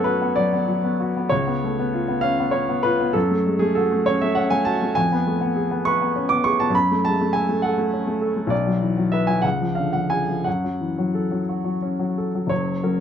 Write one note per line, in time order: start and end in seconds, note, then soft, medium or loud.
0.00 1.28 F#2 medium
0.00 1.33 A3 soft
0.00 0.22 B3 soft
0.00 1.34 A4 medium
0.00 0.04 B4 medium
0.00 1.29 C#5 medium
0.04 0.31 F#4 soft
0.04 0.36 B4 medium
0.22 0.46 B3 soft
0.36 0.62 F#3 soft
0.36 1.31 D5 medium
0.53 0.78 B3 soft
0.68 0.93 F#3 soft
0.84 1.09 B3 soft
1.00 1.25 F#4 soft
1.17 1.32 B3 soft
1.29 3.11 C#2 medium
1.29 2.23 C#5 medium
1.47 1.72 B3 soft
1.64 1.79 A3 soft
1.79 2.03 B3 soft
1.93 2.17 F4 soft
2.08 2.33 B3 soft
2.21 2.48 C#4 soft
2.21 2.53 F5 medium
2.39 2.63 B3 soft
2.51 2.78 C#4 soft
2.51 2.83 C#5 medium
2.69 2.93 B3 soft
2.83 3.09 F4 medium
2.83 3.14 B4 medium
3.00 3.15 B3 soft
3.13 4.93 F#2 medium
3.13 3.60 A4 medium
3.31 3.55 A3 soft
3.46 3.61 G#3 soft
3.59 3.86 A3 soft
3.59 3.75 G#4 medium
3.75 4.01 F#4 soft
3.75 4.06 A4 medium
3.92 4.16 A3 soft
4.06 4.31 C#4 medium
4.06 4.21 C#5 medium
4.21 4.47 A3 medium
4.21 4.37 E5 medium
4.35 4.61 C#4 soft
4.35 4.51 F#5 medium
4.50 4.76 A3 soft
4.50 4.66 G#5 medium
4.65 4.91 F#4 medium
4.65 4.96 A5 medium
4.82 4.97 A3 soft
4.95 6.70 F2 medium
4.95 5.84 G#5 medium
5.12 5.36 B3 soft
5.27 5.42 A3 soft
5.41 5.65 B3 soft
5.56 5.80 G#4 soft
5.71 5.95 B3 soft
5.85 6.10 B4 medium
5.85 6.30 C#6 medium
6.01 6.25 B3 soft
6.16 6.39 C#4 soft
6.29 6.54 B3 soft
6.29 6.44 D6 medium
6.44 6.69 G#4 soft
6.44 6.59 C#6 medium
6.60 6.75 B3 soft
6.60 6.74 A5 medium
6.70 8.45 F#2 medium
6.75 7.04 B5 medium
6.92 7.14 A3 soft
7.05 7.20 G#3 soft
7.05 7.34 A5 medium
7.21 7.43 A3 soft
7.33 7.57 A4 soft
7.33 7.62 G#5 medium
7.49 7.71 A3 soft
7.62 7.86 A4 soft
7.62 8.21 F#5 medium
7.78 8.00 A3 soft
7.93 8.16 C#4 soft
8.07 8.30 A3 soft
8.21 8.45 A4 soft
8.37 8.52 A3 soft
8.47 9.39 B1 medium
8.47 9.12 D5 medium
8.67 8.91 F#3 soft
8.82 8.97 E3 soft
8.98 9.22 F#3 soft
9.12 9.38 B4 soft
9.12 9.28 E5 medium
9.27 9.44 F#3 soft
9.27 9.44 G#5 medium
9.42 10.43 C#2 medium
9.42 9.76 F#5 medium
9.61 9.88 F3 soft
9.75 9.94 D3 soft
9.75 9.93 F5 medium
9.93 10.22 F3 soft
9.93 10.11 F#5 medium
10.10 10.40 G#4 soft
10.10 10.45 G#5 medium
10.29 10.46 F3 soft
10.44 12.47 F#2 soft
10.44 12.16 F#5 medium
10.64 10.91 F#3 soft
10.81 10.98 E3 soft
10.98 11.25 F#3 soft
11.14 11.41 A4 soft
11.31 11.58 F#3 soft
11.49 11.76 F#4 soft
11.65 11.92 F#3 soft
11.82 12.10 C#4 soft
11.99 12.28 F#3 soft
12.18 12.45 A4 soft
12.35 12.51 F#3 soft
12.47 12.79 F#1 soft
12.47 13.00 C#5 medium
12.51 12.81 F#2 soft
12.83 13.00 F#3 soft
12.83 13.00 C#4 soft
12.83 13.00 A#4 soft